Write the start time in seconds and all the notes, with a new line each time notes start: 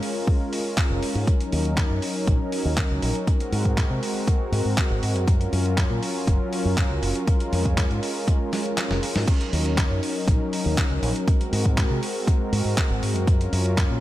0.01 G#3 C#4 F4 A#4, open hi-hat
0.27 kick
0.53 open hi-hat
0.64 G#3 C#4 F4 A#4
0.77 kick, clap
0.90 F1
1.02 G#3 C#4 F4 A#4, muted fingered electric bass stroke, open hi-hat
1.15 G#2, open hi-hat
1.26 F#3 C#4 D#4 A#4, kick, closed hi-hat
1.41 closed hi-hat
1.52 D#2, open hi-hat
1.65 closed hi-hat
1.77 kick, clap, closed hi-hat
1.90 F#2
2.01 F#3 C#4 D#4 A#4, open hi-hat
2.27 A#1, kick, closed hi-hat
2.52 open hi-hat
2.65 D#2
2.77 kick, clap, closed hi-hat
2.91 C#2
3.02 A#1, open hi-hat
3.15 closed hi-hat
3.27 G#3 C4 F#4 A#4, kick, closed hi-hat
3.40 closed hi-hat
3.52 G#2, open hi-hat
3.65 kick, closed hi-hat
3.77 kick, clap, closed hi-hat
3.90 C3
4.01 G#3 C4 F#4 A#4, open hi-hat
4.28 kick, closed hi-hat
4.52 G#2, open hi-hat
4.65 G#2
4.78 kick, clap, closed hi-hat
4.90 G#1
5.03 G#2, open hi-hat
5.16 F#2, closed hi-hat
5.27 F#3 C#4 F4 A#4, kick, closed hi-hat
5.41 closed hi-hat
5.53 F#2, open hi-hat
5.66 closed hi-hat
5.78 kick, clap, closed hi-hat
5.90 A#2
6.01 F#3 C#4 F4 A#4, open hi-hat
6.27 F#1, kick, closed hi-hat
6.53 open hi-hat
6.65 F#2
6.77 kick, clap, closed hi-hat
6.90 C#2
7.02 F#1, open hi-hat
7.15 closed hi-hat
7.26 G#3 C#4 F4 A#4, kick, closed hi-hat
7.40 closed hi-hat
7.53 F2, open hi-hat
7.65 kick, closed hi-hat
7.78 kick, clap, closed hi-hat
7.91 G#2, closed hi-hat
8.01 G#3 C#4 F4 A#4, open hi-hat
8.28 kick, closed hi-hat
8.53 snare, open hi-hat
8.66 closed hi-hat
8.78 snare, clap, closed hi-hat
8.90 F1, snare
9.03 open hi-hat
9.16 G#2, snare, open hi-hat
9.26 F#3 C#4 D#4 A#4, kick, closed hi-hat, crash
9.41 closed hi-hat
9.53 D#2, open hi-hat
9.66 closed hi-hat
9.78 kick, clap, closed hi-hat
9.90 F#2
10.02 F#3 C#4 D#4 A#4, open hi-hat
10.28 A#1, kick, closed hi-hat
10.53 open hi-hat
10.66 D#2
10.78 kick, clap, closed hi-hat
10.90 C#2
11.02 A#1, open hi-hat
11.16 closed hi-hat
11.26 G#3 C4 F#4 A#4, kick, closed hi-hat
11.41 closed hi-hat
11.53 G#2, open hi-hat
11.65 kick, closed hi-hat
11.78 kick, clap, closed hi-hat
11.90 C3
12.01 G#3 C4 F#4 A#4, open hi-hat
12.27 kick, closed hi-hat
12.53 G#2, open hi-hat
12.65 G#2
12.77 kick, clap, closed hi-hat
12.90 G#1
13.03 G#2, open hi-hat
13.15 F#2, closed hi-hat
13.27 F#3 C#4 F4 A#4, kick, closed hi-hat
13.41 closed hi-hat
13.53 F#2, open hi-hat
13.66 closed hi-hat
13.78 kick, clap, closed hi-hat
13.90 A#2